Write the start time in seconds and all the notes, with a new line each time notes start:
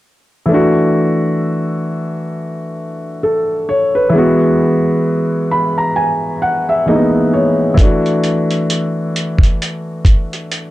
0.46 E3 A3
0.51 D4 F#4
3.23 A4
3.69 C#5
3.95 B4
4.10 E3 G#3
4.15 B3 F#4
5.51 B5
5.78 A#5
5.96 G#5
6.42 F#5
6.69 E5
6.86 E3 G#3 A#3 D#5
6.90 D#4
6.95 B3
7.33 C#5
7.74 E3 A3, kick
7.78 D4, closed hi-hat
7.83 F#4
8.06 closed hi-hat
8.24 closed hi-hat
8.51 closed hi-hat
8.70 closed hi-hat
9.16 closed hi-hat
9.39 kick
9.43 closed hi-hat
9.62 closed hi-hat
10.05 kick, closed hi-hat
10.33 closed hi-hat
10.52 closed hi-hat